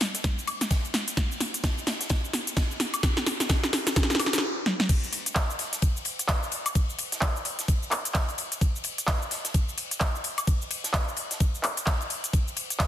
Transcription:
0.00 snare, open hi-hat, ride
0.14 snare, closed hi-hat, cabasa
0.24 kick, snare, closed hi-hat, ride, cabasa
0.39 cabasa
0.47 open hi-hat, ride, high woodblock
0.61 snare, closed hi-hat, ride, cabasa
0.71 kick, snare, closed hi-hat, ride, cabasa
0.85 ride, cabasa
0.94 snare, open hi-hat, ride
1.08 closed hi-hat, cabasa
1.17 kick, snare, closed hi-hat, ride, cabasa
1.32 cabasa
1.40 snare, open hi-hat, ride
1.54 closed hi-hat, cabasa
1.64 kick, snare, closed hi-hat, ride, cabasa
1.78 cabasa
1.87 snare, open hi-hat, ride
2.01 snare, closed hi-hat, cabasa
2.09 kick, snare, closed hi-hat, ride, cabasa
2.25 cabasa
2.33 snare, open hi-hat, ride
2.47 closed hi-hat, cabasa
2.57 kick, snare, closed hi-hat, ride, cabasa
2.71 cabasa
2.80 snare, open hi-hat, ride
2.94 closed hi-hat, cabasa, high woodblock
3.03 kick, snare, closed hi-hat, ride, cabasa
3.17 snare, cabasa
3.26 snare, open hi-hat, ride
3.40 snare, closed hi-hat, cabasa
3.49 kick, snare, closed hi-hat, ride, cabasa
3.63 snare, cabasa
3.73 snare, open hi-hat, ride
3.87 snare, closed hi-hat, cabasa
3.96 kick, snare, closed hi-hat, ride, cabasa
4.03 snare
4.10 snare, cabasa
4.15 snare
4.19 snare, open hi-hat, ride, high woodblock
4.26 snare
4.33 snare, closed hi-hat, cabasa
4.38 snare
4.66 snare
4.80 snare
4.89 kick, closed hi-hat, crash, ride, cabasa
5.04 cabasa
5.13 open hi-hat, ride
5.26 closed hi-hat, cabasa
5.35 kick, snare, clap, closed hi-hat, ride, cabasa
5.50 cabasa
5.59 snare, open hi-hat, ride
5.73 snare, closed hi-hat, cabasa
5.82 kick, closed hi-hat, ride, cabasa
5.97 cabasa
6.05 open hi-hat, ride
6.19 closed hi-hat, cabasa
6.28 kick, snare, clap, closed hi-hat, ride, cabasa
6.43 cabasa
6.51 open hi-hat, ride
6.66 closed hi-hat, cabasa, high woodblock
6.75 kick, closed hi-hat, ride, cabasa
6.90 cabasa
6.99 open hi-hat, ride
7.12 snare, closed hi-hat, cabasa
7.21 kick, snare, clap, closed hi-hat, ride, cabasa
7.36 cabasa
7.45 open hi-hat, ride
7.59 snare, closed hi-hat, cabasa
7.68 kick, closed hi-hat, ride, cabasa
7.83 cabasa
7.91 clap, open hi-hat, ride, high woodblock
8.05 closed hi-hat, ride, cabasa
8.14 kick, snare, clap, closed hi-hat, ride, cabasa
8.28 ride, cabasa
8.38 open hi-hat, ride
8.52 closed hi-hat, cabasa
8.61 kick, closed hi-hat, ride, cabasa
8.76 cabasa
8.84 open hi-hat, ride
8.98 closed hi-hat, cabasa
9.08 kick, snare, clap, closed hi-hat, ride, cabasa
9.22 cabasa
9.31 snare, open hi-hat, ride
9.44 snare, closed hi-hat, cabasa
9.54 kick, closed hi-hat, ride, cabasa
9.69 cabasa
9.78 open hi-hat, ride
9.91 closed hi-hat, cabasa
10.00 kick, snare, clap, closed hi-hat, ride, cabasa
10.15 cabasa
10.24 open hi-hat, ride
10.38 closed hi-hat, cabasa, high woodblock
10.47 kick, closed hi-hat, ride, cabasa
10.62 cabasa
10.71 open hi-hat, ride
10.84 snare, closed hi-hat, cabasa
10.94 kick, snare, clap, closed hi-hat, ride, cabasa
11.08 cabasa
11.16 open hi-hat, ride
11.31 snare, closed hi-hat, cabasa
11.40 kick, closed hi-hat, ride, cabasa
11.55 cabasa
11.63 clap, open hi-hat, ride, high woodblock
11.77 closed hi-hat, ride, cabasa
11.87 kick, snare, clap, closed hi-hat, ride, cabasa
12.00 ride, cabasa
12.10 open hi-hat, ride
12.24 closed hi-hat, cabasa
12.33 kick, closed hi-hat, ride, cabasa
12.48 cabasa
12.57 open hi-hat, ride
12.70 closed hi-hat, cabasa
12.80 kick, snare, clap, closed hi-hat, ride, cabasa

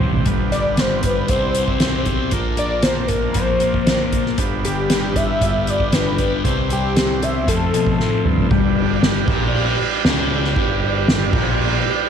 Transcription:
Already playing: A1 C3 C4 D4 E4 G4 C5
0.00 G3 C4, mid tom
0.14 floor tom
0.26 G1 G2 D3 G3 B3 F4 B4, kick, closed hi-hat
0.52 D3 G3 D5, snare, closed hi-hat
0.77 G2 D3 G3 C5, snare, closed hi-hat
1.03 B4, kick, snare, closed hi-hat
1.28 C2 C3 G3 C4 E4 G4 C5, kick, closed hi-hat
1.55 G3 C4, closed hi-hat
1.68 kick
1.80 B1 C3 G3 C4, snare, closed hi-hat
2.05 G3 C4, kick, closed hi-hat
2.31 A#1 A#2 F3 A#3 F4 A4 A#4, kick, closed hi-hat
2.57 F3 A#3 D5, closed hi-hat
2.82 A#2 F3 C5, snare, closed hi-hat
2.87 A#3
3.07 A#4, kick, closed hi-hat
3.33 A#1 A#2 C5, kick, closed hi-hat
3.37 F3 A#3
3.60 F3 A#3, closed hi-hat
3.74 kick
3.86 A#1 A#2 F3 A#3, snare, closed hi-hat
4.12 F3 A#3, kick, closed hi-hat
4.26 snare
4.38 G1 G2 D3 G3 B3 D4 G4 B4, kick, closed hi-hat
4.65 D3 G3 G4, closed hi-hat
4.90 G2 D3 G3 G4, snare, closed hi-hat
5.16 E5, kick, closed hi-hat
5.41 G1 G2 D3 G3, kick, closed hi-hat
5.67 D3 G3 D5, closed hi-hat
5.80 kick
5.92 G1 G2 D3 B4, snare, closed hi-hat
5.97 G3
6.18 D3 G3, kick, closed hi-hat
6.44 C2 C3 G3 C4 E4 G4 C5, kick, closed hi-hat
6.70 G3 C4 G4, closed hi-hat
6.96 C3 G3 C4, snare, closed hi-hat
7.23 E5, closed hi-hat
7.48 F2 C3 F3 F4 A4, kick, closed hi-hat
7.74 B2 C3 F3, closed hi-hat
7.87 kick
7.99 F2 A2 C3 F3, snare
8.25 G2 C3 F3, mid tom
8.38 floor tom
8.51 G1 G2 G3 G4 B4 D5, kick, ride
8.77 ride
9.02 snare, ride
9.28 A#1 A#2, kick, ride
9.54 ride
9.79 muted distorted electric guitar stroke, muted picked electric bass stroke, ride
10.04 C#2 C#3, snare, ride
10.31 ride
10.44 snare
10.56 G1 G2, kick, ride
10.83 ride
11.08 snare, ride
11.33 A#1 A#2, kick, ride
11.60 ride
11.85 muted distorted electric guitar stroke, muted picked electric bass stroke, ride

